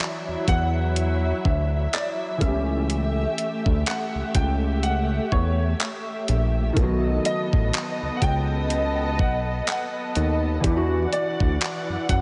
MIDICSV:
0, 0, Header, 1, 6, 480
1, 0, Start_track
1, 0, Tempo, 967742
1, 1437, Time_signature, 4, 2, 24, 8
1, 6059, End_track
2, 0, Start_track
2, 0, Title_t, "Grand piano"
2, 0, Program_c, 0, 0
2, 0, Note_on_c, 0, 74, 77
2, 241, Note_on_c, 0, 78, 108
2, 254, Note_off_c, 0, 74, 0
2, 721, Note_on_c, 0, 76, 87
2, 733, Note_off_c, 0, 78, 0
2, 959, Note_on_c, 0, 74, 86
2, 966, Note_off_c, 0, 76, 0
2, 1013, Note_off_c, 0, 74, 0
2, 1197, Note_on_c, 0, 76, 89
2, 1917, Note_on_c, 0, 78, 97
2, 1939, Note_off_c, 0, 76, 0
2, 2141, Note_off_c, 0, 78, 0
2, 2157, Note_on_c, 0, 79, 101
2, 2380, Note_off_c, 0, 79, 0
2, 2396, Note_on_c, 0, 78, 96
2, 2638, Note_on_c, 0, 73, 87
2, 2644, Note_off_c, 0, 78, 0
2, 3098, Note_off_c, 0, 73, 0
2, 3600, Note_on_c, 0, 75, 103
2, 4030, Note_off_c, 0, 75, 0
2, 4051, Note_on_c, 0, 78, 84
2, 4079, Note_off_c, 0, 78, 0
2, 4081, Note_on_c, 0, 79, 122
2, 4539, Note_off_c, 0, 79, 0
2, 4563, Note_on_c, 0, 78, 94
2, 4616, Note_off_c, 0, 78, 0
2, 4802, Note_on_c, 0, 78, 87
2, 5159, Note_off_c, 0, 78, 0
2, 5519, Note_on_c, 0, 74, 92
2, 5978, Note_off_c, 0, 74, 0
2, 5998, Note_on_c, 0, 78, 96
2, 6029, Note_off_c, 0, 78, 0
2, 6059, End_track
3, 0, Start_track
3, 0, Title_t, "String section"
3, 0, Program_c, 1, 48
3, 0, Note_on_c, 1, 54, 77
3, 0, Note_on_c, 1, 64, 66
3, 0, Note_on_c, 1, 76, 80
3, 1180, Note_off_c, 1, 54, 0
3, 1180, Note_off_c, 1, 64, 0
3, 1196, Note_on_c, 1, 67, 68
3, 1197, Note_on_c, 1, 57, 73
3, 3336, Note_off_c, 1, 76, 0
3, 3337, Note_off_c, 1, 57, 0
3, 3337, Note_off_c, 1, 67, 0
3, 3355, Note_on_c, 1, 59, 73
3, 3355, Note_on_c, 1, 69, 67
3, 3356, Note_on_c, 1, 75, 88
3, 5257, Note_off_c, 1, 59, 0
3, 5257, Note_off_c, 1, 69, 0
3, 5257, Note_off_c, 1, 75, 0
3, 5278, Note_on_c, 1, 52, 73
3, 5279, Note_on_c, 1, 74, 83
3, 5279, Note_on_c, 1, 78, 71
3, 6059, Note_off_c, 1, 52, 0
3, 6059, Note_off_c, 1, 74, 0
3, 6059, Note_off_c, 1, 78, 0
3, 6059, End_track
4, 0, Start_track
4, 0, Title_t, "Felt piano"
4, 0, Program_c, 2, 0
4, 0, Control_c, 2, 64, 127
4, 0, Note_on_c, 2, 52, 75
4, 0, Note_on_c, 2, 62, 66
4, 0, Note_on_c, 2, 64, 65
4, 0, Note_on_c, 2, 66, 77
4, 1168, Note_off_c, 2, 52, 0
4, 1176, Note_off_c, 2, 64, 0
4, 1176, Note_on_c, 2, 52, 64
4, 1184, Note_off_c, 2, 62, 0
4, 1192, Note_off_c, 2, 66, 0
4, 1192, Note_on_c, 2, 57, 58
4, 1204, Control_c, 2, 64, 0
4, 1208, Note_on_c, 2, 59, 46
4, 1225, Note_on_c, 2, 67, 69
4, 1240, Note_off_c, 2, 59, 0
4, 1241, Note_on_c, 2, 61, 58
4, 1296, Control_c, 2, 64, 127
4, 3087, Note_off_c, 2, 52, 0
4, 3095, Note_off_c, 2, 57, 0
4, 3111, Note_off_c, 2, 67, 0
4, 3119, Note_off_c, 2, 61, 0
4, 3337, Note_on_c, 2, 51, 76
4, 3353, Note_on_c, 2, 57, 70
4, 3364, Control_c, 2, 64, 0
4, 3369, Note_on_c, 2, 59, 67
4, 3385, Note_on_c, 2, 54, 83
4, 3453, Control_c, 2, 64, 127
4, 5247, Note_off_c, 2, 51, 0
4, 5255, Note_off_c, 2, 57, 0
4, 5258, Note_on_c, 2, 52, 71
4, 5263, Note_off_c, 2, 59, 0
4, 5271, Note_off_c, 2, 54, 0
4, 5274, Note_on_c, 2, 67, 70
4, 5284, Control_c, 2, 64, 0
4, 5290, Note_on_c, 2, 62, 67
4, 5307, Note_on_c, 2, 64, 67
4, 5329, Note_off_c, 2, 64, 0
4, 5339, Note_on_c, 2, 66, 83
4, 5357, Control_c, 2, 64, 127
4, 6059, Note_off_c, 2, 52, 0
4, 6059, Note_off_c, 2, 62, 0
4, 6059, Note_off_c, 2, 66, 0
4, 6059, Note_off_c, 2, 67, 0
4, 6059, End_track
5, 0, Start_track
5, 0, Title_t, "Analog synth bass"
5, 0, Program_c, 3, 38
5, 140, Note_on_c, 3, 40, 45
5, 179, Note_off_c, 3, 40, 0
5, 238, Note_on_c, 3, 40, 91
5, 659, Note_off_c, 3, 40, 0
5, 721, Note_on_c, 3, 38, 89
5, 930, Note_off_c, 3, 38, 0
5, 1198, Note_on_c, 3, 37, 93
5, 1619, Note_off_c, 3, 37, 0
5, 1816, Note_on_c, 3, 38, 88
5, 1905, Note_off_c, 3, 38, 0
5, 2059, Note_on_c, 3, 37, 48
5, 2099, Note_off_c, 3, 37, 0
5, 2157, Note_on_c, 3, 37, 94
5, 2578, Note_off_c, 3, 37, 0
5, 2640, Note_on_c, 3, 40, 85
5, 2849, Note_off_c, 3, 40, 0
5, 3119, Note_on_c, 3, 34, 89
5, 3329, Note_off_c, 3, 34, 0
5, 3358, Note_on_c, 3, 35, 103
5, 3568, Note_off_c, 3, 35, 0
5, 3737, Note_on_c, 3, 33, 78
5, 3825, Note_off_c, 3, 33, 0
5, 3979, Note_on_c, 3, 37, 48
5, 4019, Note_off_c, 3, 37, 0
5, 4078, Note_on_c, 3, 37, 92
5, 4561, Note_on_c, 3, 35, 83
5, 4568, Note_off_c, 3, 37, 0
5, 4770, Note_off_c, 3, 35, 0
5, 5041, Note_on_c, 3, 39, 91
5, 5250, Note_off_c, 3, 39, 0
5, 5279, Note_on_c, 3, 40, 117
5, 5489, Note_off_c, 3, 40, 0
5, 5657, Note_on_c, 3, 38, 82
5, 5745, Note_off_c, 3, 38, 0
5, 5900, Note_on_c, 3, 42, 45
5, 5940, Note_off_c, 3, 42, 0
5, 5999, Note_on_c, 3, 42, 83
5, 6059, Note_off_c, 3, 42, 0
5, 6059, End_track
6, 0, Start_track
6, 0, Title_t, "Drums"
6, 5, Note_on_c, 9, 39, 105
6, 55, Note_off_c, 9, 39, 0
6, 237, Note_on_c, 9, 36, 88
6, 237, Note_on_c, 9, 42, 75
6, 286, Note_off_c, 9, 36, 0
6, 286, Note_off_c, 9, 42, 0
6, 478, Note_on_c, 9, 42, 64
6, 527, Note_off_c, 9, 42, 0
6, 720, Note_on_c, 9, 36, 95
6, 769, Note_off_c, 9, 36, 0
6, 958, Note_on_c, 9, 42, 62
6, 965, Note_on_c, 9, 39, 105
6, 1008, Note_off_c, 9, 42, 0
6, 1014, Note_off_c, 9, 39, 0
6, 1197, Note_on_c, 9, 36, 102
6, 1197, Note_on_c, 9, 42, 68
6, 1246, Note_off_c, 9, 36, 0
6, 1246, Note_off_c, 9, 42, 0
6, 1437, Note_on_c, 9, 42, 62
6, 1487, Note_off_c, 9, 42, 0
6, 1677, Note_on_c, 9, 42, 74
6, 1727, Note_off_c, 9, 42, 0
6, 1815, Note_on_c, 9, 36, 86
6, 1865, Note_off_c, 9, 36, 0
6, 1917, Note_on_c, 9, 42, 62
6, 1925, Note_on_c, 9, 39, 107
6, 1966, Note_off_c, 9, 42, 0
6, 1974, Note_off_c, 9, 39, 0
6, 2156, Note_on_c, 9, 36, 87
6, 2156, Note_on_c, 9, 42, 76
6, 2205, Note_off_c, 9, 42, 0
6, 2206, Note_off_c, 9, 36, 0
6, 2397, Note_on_c, 9, 42, 61
6, 2446, Note_off_c, 9, 42, 0
6, 2639, Note_on_c, 9, 36, 89
6, 2688, Note_off_c, 9, 36, 0
6, 2876, Note_on_c, 9, 42, 64
6, 2883, Note_on_c, 9, 39, 105
6, 2926, Note_off_c, 9, 42, 0
6, 2932, Note_off_c, 9, 39, 0
6, 3116, Note_on_c, 9, 42, 68
6, 3165, Note_off_c, 9, 42, 0
6, 3356, Note_on_c, 9, 36, 96
6, 3356, Note_on_c, 9, 42, 62
6, 3406, Note_off_c, 9, 36, 0
6, 3406, Note_off_c, 9, 42, 0
6, 3597, Note_on_c, 9, 42, 69
6, 3646, Note_off_c, 9, 42, 0
6, 3735, Note_on_c, 9, 36, 87
6, 3785, Note_off_c, 9, 36, 0
6, 3836, Note_on_c, 9, 42, 62
6, 3844, Note_on_c, 9, 39, 103
6, 3886, Note_off_c, 9, 42, 0
6, 3894, Note_off_c, 9, 39, 0
6, 4076, Note_on_c, 9, 36, 90
6, 4076, Note_on_c, 9, 42, 77
6, 4126, Note_off_c, 9, 36, 0
6, 4126, Note_off_c, 9, 42, 0
6, 4317, Note_on_c, 9, 42, 63
6, 4366, Note_off_c, 9, 42, 0
6, 4559, Note_on_c, 9, 36, 94
6, 4609, Note_off_c, 9, 36, 0
6, 4797, Note_on_c, 9, 42, 62
6, 4804, Note_on_c, 9, 39, 101
6, 4847, Note_off_c, 9, 42, 0
6, 4853, Note_off_c, 9, 39, 0
6, 5037, Note_on_c, 9, 42, 71
6, 5086, Note_off_c, 9, 42, 0
6, 5277, Note_on_c, 9, 36, 93
6, 5277, Note_on_c, 9, 42, 60
6, 5327, Note_off_c, 9, 36, 0
6, 5327, Note_off_c, 9, 42, 0
6, 5518, Note_on_c, 9, 42, 73
6, 5568, Note_off_c, 9, 42, 0
6, 5656, Note_on_c, 9, 36, 91
6, 5706, Note_off_c, 9, 36, 0
6, 5758, Note_on_c, 9, 42, 62
6, 5766, Note_on_c, 9, 39, 107
6, 5808, Note_off_c, 9, 42, 0
6, 5815, Note_off_c, 9, 39, 0
6, 5998, Note_on_c, 9, 36, 91
6, 5998, Note_on_c, 9, 42, 74
6, 6047, Note_off_c, 9, 36, 0
6, 6047, Note_off_c, 9, 42, 0
6, 6059, End_track
0, 0, End_of_file